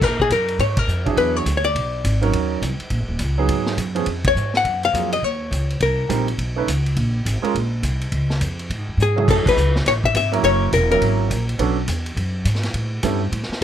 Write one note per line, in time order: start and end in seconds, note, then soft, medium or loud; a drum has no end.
0.02 0.30 A#2 medium
0.02 0.20 A#4 medium
0.02 kick medium
0.02 snare soft
0.02 crash medium
0.20 0.31 G#4 medium
0.20 kick medium
0.30 0.58 F#2 medium
0.30 0.58 A#4 medium
0.30 kick soft
0.30 hi-hat pedal medium
0.30 ride medium
0.48 ride soft
0.59 0.87 G#2 medium
0.59 0.79 C#5 medium
0.59 kick soft
0.59 ride medium
0.77 1.07 A#4 medium
0.77 kick medium
0.77 ride medium
0.87 1.16 F2 medium
0.87 hi-hat pedal medium
1.05 1.43 F#3 medium
1.05 1.44 D4 medium
1.05 1.44 E4 medium
1.05 1.44 G#4 medium
1.05 kick soft
1.05 ride soft
1.17 1.45 E2 medium
1.17 1.36 B4 medium
1.17 kick soft
1.17 ride medium
1.36 1.56 C#5 loud
1.46 1.74 D2 medium
1.46 kick soft
1.46 hi-hat pedal medium
1.46 ride medium
1.57 1.65 C#5 medium
1.64 2.18 D5 medium
1.64 ride soft
1.75 2.03 B1 medium
1.75 kick soft
1.75 ride medium
2.04 2.32 G#1 medium
2.04 kick soft
2.04 hi-hat pedal medium
2.04 ride medium
2.21 2.59 F#3 medium
2.21 2.60 C#4 medium
2.21 2.60 D#4 medium
2.21 2.60 A#4 medium
2.21 ride soft
2.33 2.61 D#2 medium
2.33 kick soft
2.33 ride medium
2.62 2.79 C2 medium
2.62 kick soft
2.62 hi-hat pedal medium
2.62 ride medium
2.80 muted upright bass stroke soft
2.80 ride soft
2.90 3.00 A#1 medium
2.90 kick soft
2.90 ride medium
3.00 3.08 F#1 medium
3.08 3.18 D#1 medium
3.19 3.48 C#2 medium
3.19 kick soft
3.19 hi-hat pedal medium
3.19 ride medium
3.38 3.75 F#3 medium
3.38 3.76 B3 medium
3.38 3.76 D#4 medium
3.38 3.76 G#4 medium
3.48 3.77 G#2 medium
3.48 kick soft
3.48 ride medium
3.66 snare medium
3.77 4.06 F#2 medium
3.77 kick soft
3.77 hi-hat pedal medium
3.77 ride medium
3.95 4.05 F3 medium
3.95 4.05 B3 medium
3.95 4.05 C#4 medium
3.95 4.06 G#4 medium
3.95 ride soft
4.06 4.35 F2 medium
4.06 kick soft
4.06 ride medium
4.24 4.53 C#5 loud
4.24 kick medium
4.24 ride medium
4.35 4.63 G#2 medium
4.35 hi-hat pedal medium
4.54 4.84 F#5 medium
4.54 snare soft
4.65 4.93 F#2 medium
4.65 kick soft
4.65 ride medium
4.83 5.13 F5 loud
4.83 ride soft
4.92 5.22 F2 medium
4.92 5.09 F#3 medium
4.92 5.10 A#3 soft
4.92 5.10 F4 medium
4.92 5.10 G#4 medium
4.92 kick soft
4.92 hi-hat pedal medium
4.92 ride medium
5.12 5.24 D#5 medium
5.12 ride medium
5.23 5.50 D#2 medium
5.23 5.83 C#5 medium
5.23 kick soft
5.51 5.79 C#2 medium
5.51 kick soft
5.51 hi-hat pedal medium
5.51 ride medium
5.70 ride soft
5.80 6.08 C2 medium
5.80 6.25 A#4 medium
5.80 kick soft
5.80 ride medium
6.09 6.37 A#1 medium
6.09 6.25 G3 medium
6.09 6.25 C4 medium
6.09 6.26 D#4 medium
6.09 6.26 A#4 medium
6.09 kick soft
6.09 hi-hat pedal medium
6.09 ride medium
6.28 ride soft
6.38 6.66 B1 medium
6.38 kick soft
6.38 ride medium
6.56 6.66 A3 medium
6.56 6.66 C#4 medium
6.56 6.67 D#4 medium
6.56 6.67 B4 medium
6.67 6.95 C#2 medium
6.67 kick soft
6.67 hi-hat pedal medium
6.67 ride medium
6.86 ride soft
6.96 7.24 A#1 medium
6.96 kick soft
6.96 ride medium
7.25 7.42 G#1 medium
7.25 kick soft
7.25 hi-hat pedal medium
7.25 ride medium
7.42 7.52 G#3 medium
7.42 7.53 C#4 medium
7.42 7.53 F4 medium
7.42 7.53 A#4 medium
7.42 ride soft
7.55 7.82 A#1 medium
7.55 kick soft
7.55 ride medium
7.83 8.11 C2 medium
7.83 kick soft
7.83 hi-hat pedal medium
7.83 ride medium
8.01 ride soft
8.12 8.40 C#2 medium
8.12 kick soft
8.12 ride medium
8.30 snare soft
8.41 8.69 F2 medium
8.41 kick soft
8.41 hi-hat pedal soft
8.41 ride medium
8.59 ride soft
8.70 8.78 A2 medium
8.70 kick soft
8.70 ride medium
8.78 8.87 G#2 medium
8.88 8.97 F2 medium
8.97 9.26 G#2 medium
8.97 hi-hat pedal medium
9.02 9.30 G#4 medium
9.16 9.54 F#3 medium
9.16 9.54 A3 medium
9.16 9.54 E4 medium
9.16 9.55 G#4 medium
9.16 mid tom medium
9.28 9.45 F#2 medium
9.28 9.46 A4 medium
9.28 kick medium
9.28 crash medium
9.46 9.74 B4 loud
9.46 muted upright bass stroke soft
9.46 kick medium
9.46 crash medium
9.57 9.85 C#2 medium
9.57 hi-hat pedal medium
9.76 snare medium
9.86 10.14 A1 medium
9.86 9.93 C#5 loud
9.86 kick soft
9.86 snare soft
9.86 ride medium
10.04 10.16 E5 loud
10.04 kick medium
10.14 10.42 G#1 medium
10.14 10.42 E5 loud
10.14 kick soft
10.14 hi-hat pedal medium
10.14 ride medium
10.32 10.70 F#3 medium
10.32 10.70 A#3 medium
10.32 10.70 C#4 medium
10.32 10.70 E4 medium
10.32 10.70 A#4 medium
10.32 ride soft
10.43 10.71 F#1 medium
10.43 10.71 C#5 loud
10.43 kick soft
10.43 ride medium
10.72 11.00 E1 medium
10.72 10.90 A#4 medium
10.72 kick soft
10.72 hi-hat pedal medium
10.72 ride medium
10.91 11.28 F#3 medium
10.91 11.28 A#3 medium
10.91 11.28 C#4 medium
10.91 11.28 E4 medium
10.91 11.28 A#4 medium
10.91 11.45 A#4 medium
10.91 ride soft
11.02 11.29 G#1 medium
11.02 kick soft
11.02 ride medium
11.30 11.58 A#1 medium
11.30 kick soft
11.30 hi-hat pedal medium
11.30 ride medium
11.49 ride soft
11.59 11.87 B1 medium
11.59 11.75 F#3 medium
11.59 11.75 B3 medium
11.59 11.75 C#4 medium
11.59 11.75 D4 medium
11.59 11.76 A4 medium
11.59 kick soft
11.59 ride medium
11.88 12.16 E2 medium
11.88 kick soft
11.88 hi-hat pedal medium
11.88 ride medium
12.06 ride soft
12.17 12.44 F#2 medium
12.17 kick soft
12.17 ride medium
12.45 12.73 G#2 medium
12.45 kick soft
12.45 hi-hat pedal medium
12.45 ride medium
12.55 snare soft
12.63 snare soft
12.63 ride soft
12.74 13.02 A2 medium
12.74 kick soft
12.74 ride medium
13.03 13.31 G2 loud
13.03 13.19 G3 medium
13.03 13.20 B3 medium
13.03 13.20 C#4 medium
13.03 13.20 E4 medium
13.03 13.20 A4 medium
13.03 kick soft
13.03 hi-hat pedal medium
13.03 ride medium
13.32 13.48 A2 medium
13.32 kick soft
13.32 ride medium
13.43 snare soft
13.49 muted upright bass stroke soft
13.49 snare soft